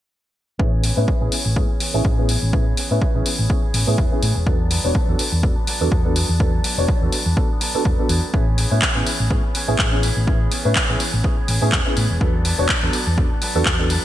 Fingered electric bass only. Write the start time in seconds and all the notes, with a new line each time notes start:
0.60 A1
0.97 A2
1.22 A1
1.46 A1
1.56 A2
1.94 A1
2.43 A1
2.91 A2
3.15 A1
3.39 A1
3.63 muted fingered electric bass stroke
3.74 A1
3.87 A2
3.98 E1
4.22 A2
4.36 E1
4.84 E1
5.08 E2
5.19 muted fingered electric bass stroke
5.32 E2
5.43 E1
5.81 E2
5.92 E2
6.29 E2
6.78 E1
7.02 E2
7.26 E2
7.75 muted fingered electric bass stroke
7.85 E1
8.10 E2
8.34 A1
8.72 A2
8.96 A1
9.20 A1
9.31 A2
9.68 A1
9.79 A1
10.17 A1
10.65 A2
10.89 A1
11.00 muted fingered electric bass stroke
11.14 A1
11.38 muted fingered electric bass stroke
11.49 A1
11.62 A2
11.73 E1
11.97 A2
12.10 E1
12.59 E1
12.83 E2
13.07 E2
13.18 E1
13.55 E2